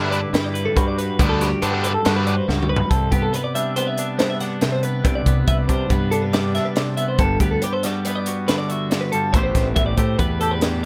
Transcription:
Already playing: fingered electric bass G2, clean electric guitar G2 D3 G3 A4, overdriven electric guitar D3 G3 B3 D4
0.01 clean electric guitar E4 E5
0.11 clean electric guitar B4 D5, closed hi-hat
0.33 clean electric guitar G2 E4 B4, fingered electric bass G2, snare, closed hi-hat
0.44 clean electric guitar D5
0.54 clean electric guitar B4, closed hi-hat
0.65 clean electric guitar A4
0.76 clean electric guitar G2 F#4 B4, fingered electric bass G2, kick, closed hi-hat
0.88 clean electric guitar D5
0.98 clean electric guitar B4, closed hi-hat
1.19 fingered electric bass D2, overdriven electric guitar D3 G3 B3 D4, clean electric guitar G3, kick, closed hi-hat
1.29 clean electric guitar A4
1.41 clean electric guitar F#4 G4, snare, closed hi-hat
1.62 fingered electric bass G2, overdriven electric guitar D3 G3 B3 D4, clean electric guitar G4 B4, closed hi-hat
1.73 clean electric guitar G4 A4
1.84 clean electric guitar B4, closed hi-hat
1.94 clean electric guitar A4
2.05 fingered electric bass G2, overdriven electric guitar D3 G3 B3 D4, clean electric guitar F#4, snare, closed hi-hat
2.16 clean electric guitar B4
2.27 clean electric guitar B4 D5, closed hi-hat
2.37 clean electric guitar C5
2.47 fingered electric bass C#2, clean electric guitar G2 F#4 B4, snare
2.58 clean electric guitar G4
2.63 mid tom
2.69 clean electric guitar B4
2.76 floor tom
2.90 fingered electric bass C2, clean electric guitar C3 A4, kick, closed hi-hat
3.11 fingered electric bass G2, clean electric guitar B3 G4, kick, closed hi-hat
3.22 clean electric guitar A4
3.33 clean electric guitar B4, closed hi-hat
3.44 clean electric guitar D5
3.55 clean electric guitar G3 D4 E5, closed hi-hat
3.76 clean electric guitar B3 C5, closed hi-hat
3.87 clean electric guitar E5
3.98 clean electric guitar D4, closed hi-hat
4.18 clean electric guitar G3 B3 C5, snare, closed hi-hat
4.30 clean electric guitar E5
4.40 clean electric guitar D4 F#5, snare, closed hi-hat
4.61 clean electric guitar C3 E5, snare, closed hi-hat
4.72 clean electric guitar C5
4.83 clean electric guitar B3 B4, closed hi-hat
5.04 fingered electric bass C2, clean electric guitar C3 D5, kick, closed hi-hat
5.15 clean electric guitar D5
5.26 fingered electric bass C2, clean electric guitar B3, kick, closed hi-hat
5.48 fingered electric bass C2, clean electric guitar B4 E5, kick, closed hi-hat
5.58 clean electric guitar D5
5.68 fingered electric bass C3, clean electric guitar G3 D4 C5, kick, closed hi-hat
5.90 fingered electric bass G2, clean electric guitar B3 B4, kick, closed hi-hat
6.11 clean electric guitar D4 A4, closed hi-hat
6.22 clean electric guitar B4
6.33 clean electric guitar G3 B3 D5, snare, closed hi-hat
6.55 clean electric guitar D4 E5, snare, closed hi-hat
6.65 clean electric guitar B4
6.76 clean electric guitar C3 D5, snare, closed hi-hat
6.97 clean electric guitar B3 E5, closed hi-hat
7.08 clean electric guitar C5
7.19 fingered electric bass G1, clean electric guitar G2 A4, kick, closed hi-hat
7.40 fingered electric bass D2, clean electric guitar B3 G4, kick, closed hi-hat
7.51 clean electric guitar A4
7.62 clean electric guitar G4 B4, closed hi-hat
7.73 clean electric guitar A4 C5
7.83 clean electric guitar G3 F#4 D5, snare, closed hi-hat
8.05 clean electric guitar B3 B4, closed hi-hat
8.16 clean electric guitar D5
8.26 clean electric guitar F#4, closed hi-hat
8.48 clean electric guitar D3 B3 B4, snare, closed hi-hat
8.58 clean electric guitar D5
8.68 clean electric guitar F#4 E5, closed hi-hat
8.90 clean electric guitar D5, snare, closed hi-hat
9.01 clean electric guitar B4
9.12 clean electric guitar G2 A4, closed hi-hat
9.33 fingered electric bass A1, clean electric guitar A2 A3 C5, kick, closed hi-hat
9.37 clean electric guitar B3 G4 C5
9.43 clean electric guitar C5
9.55 fingered electric bass A1, kick, snare, closed hi-hat
9.76 fingered electric bass A1, clean electric guitar E5, kick, closed hi-hat
9.86 clean electric guitar D5
9.97 fingered electric bass A2, clean electric guitar A3 G4 C5, kick, closed hi-hat
10.19 fingered electric bass E2, clean electric guitar B3 B4, kick, closed hi-hat
10.41 clean electric guitar G4 A4, closed hi-hat
10.51 clean electric guitar B4
10.61 clean electric guitar E3 B3 D5, snare, closed hi-hat

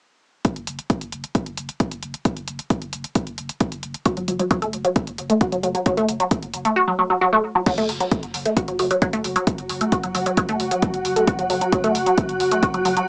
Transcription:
0.45 kick, closed hi-hat
0.56 sub bass F#1, closed hi-hat
0.67 sub bass F#1, closed hi-hat
0.79 closed hi-hat
0.90 kick, closed hi-hat
1.01 sub bass F#1, closed hi-hat
1.12 sub bass F#1, closed hi-hat
1.24 closed hi-hat
1.35 kick, closed hi-hat
1.46 sub bass F#1, closed hi-hat
1.57 sub bass F#1, closed hi-hat
1.69 closed hi-hat
1.80 kick, closed hi-hat
1.91 sub bass F#1, closed hi-hat
2.03 sub bass F#1, closed hi-hat
2.14 closed hi-hat
2.25 kick, closed hi-hat
2.37 sub bass F#1, closed hi-hat
2.48 sub bass F#1, closed hi-hat
2.59 closed hi-hat
2.70 kick, closed hi-hat
2.82 sub bass F#1, closed hi-hat
2.93 sub bass F#1, closed hi-hat
3.04 closed hi-hat
3.15 kick, closed hi-hat
3.27 sub bass F#1, closed hi-hat
3.38 sub bass F#1, closed hi-hat
3.49 closed hi-hat
3.60 kick, closed hi-hat
3.72 sub bass F#1, closed hi-hat
3.83 sub bass F#1, closed hi-hat
3.94 closed hi-hat
4.05 synth arpeggio sound F#4, kick, closed hi-hat
4.17 sub bass F#1, synth arpeggio sound F#3, closed hi-hat
4.28 sub bass F#1, synth arpeggio sound F#3, closed hi-hat
4.39 synth arpeggio sound F#3, closed hi-hat
4.51 synth arpeggio sound F#3, kick, closed hi-hat
4.62 sub bass F#1, synth arpeggio sound A3, closed hi-hat
4.73 sub bass F#1, closed hi-hat
4.85 synth arpeggio sound F#3, closed hi-hat
4.96 kick, closed hi-hat
5.07 sub bass F#1, closed hi-hat
5.18 sub bass F#1, closed hi-hat
5.30 synth arpeggio sound A3, closed hi-hat
5.41 synth arpeggio sound F#4, kick, closed hi-hat
5.52 sub bass F#1, synth arpeggio sound F#3, closed hi-hat
5.63 sub bass F#1, synth arpeggio sound F#3, closed hi-hat
5.75 synth arpeggio sound F#3, closed hi-hat
5.86 synth arpeggio sound F#3, kick, closed hi-hat
5.97 sub bass F#1, synth arpeggio sound A3, closed hi-hat
6.09 sub bass F#1, closed hi-hat
6.20 synth arpeggio sound F#3, closed hi-hat
6.31 kick, closed hi-hat
6.42 sub bass F#1, closed hi-hat
6.54 sub bass F#1, closed hi-hat
6.65 synth arpeggio sound A3, closed hi-hat
6.76 synth arpeggio sound F#4
6.88 synth arpeggio sound F#3
6.99 synth arpeggio sound F#3
7.10 synth arpeggio sound F#3
7.21 synth arpeggio sound F#3
7.33 synth arpeggio sound A3
7.55 synth arpeggio sound F#3
7.66 synth drone F#3 F#4, synth arpeggio sound F#3, kick, closed hi-hat, crash
7.78 sub bass F#1, synth arpeggio sound A3, closed hi-hat
7.89 sub bass F#1, open hi-hat
8.01 synth arpeggio sound F#3, closed hi-hat
8.12 kick, closed hi-hat
8.23 sub bass F#1, closed hi-hat
8.34 sub bass F#1, open hi-hat
8.46 synth arpeggio sound A3, closed hi-hat
8.57 synth arpeggio sound F#4, kick, closed hi-hat
8.68 sub bass F#1, synth arpeggio sound F#3, closed hi-hat
8.79 sub bass F#1, synth arpeggio sound F#3, open hi-hat
8.91 synth arpeggio sound F#3, closed hi-hat
9.02 synth arpeggio sound F#3, kick, closed hi-hat
9.13 sub bass F#1, synth arpeggio sound A3, closed hi-hat
9.24 sub bass F#1, open hi-hat
9.36 synth arpeggio sound F#3, closed hi-hat
9.47 kick, closed hi-hat
9.58 sub bass F#1, closed hi-hat
9.69 sub bass F#1, open hi-hat
9.81 synth arpeggio sound A3, closed hi-hat
9.92 synth arpeggio sound F#4, kick, closed hi-hat
10.03 sub bass F#1, synth arpeggio sound F#3, closed hi-hat
10.15 sub bass F#1, synth arpeggio sound F#3, open hi-hat
10.26 synth arpeggio sound F#3, closed hi-hat
10.37 synth arpeggio sound F#3, kick, closed hi-hat
10.48 sub bass F#1, synth arpeggio sound A3, closed hi-hat
10.60 sub bass F#1, open hi-hat
10.71 synth arpeggio sound F#3, closed hi-hat
10.82 kick, closed hi-hat
10.94 sub bass F#1, closed hi-hat
11.05 sub bass F#1, open hi-hat
11.16 synth arpeggio sound A3, closed hi-hat
11.27 synth arpeggio sound F#4, kick, closed hi-hat
11.39 sub bass F#1, synth arpeggio sound F#3, closed hi-hat
11.50 sub bass F#1, synth arpeggio sound F#3, open hi-hat
11.61 synth arpeggio sound F#3, closed hi-hat
11.72 synth arpeggio sound F#3, kick, closed hi-hat
11.84 sub bass F#1, synth arpeggio sound A3, closed hi-hat
11.95 sub bass F#1, open hi-hat
12.06 synth arpeggio sound F#3, closed hi-hat
12.18 kick, closed hi-hat
12.29 sub bass F#1, closed hi-hat
12.40 sub bass F#1, open hi-hat
12.51 synth arpeggio sound A3, closed hi-hat
12.63 synth arpeggio sound F#4, kick, closed hi-hat
12.74 sub bass F#1, synth arpeggio sound F#3, closed hi-hat
12.85 sub bass F#1, synth arpeggio sound F#3, open hi-hat
12.97 synth arpeggio sound F#3, closed hi-hat

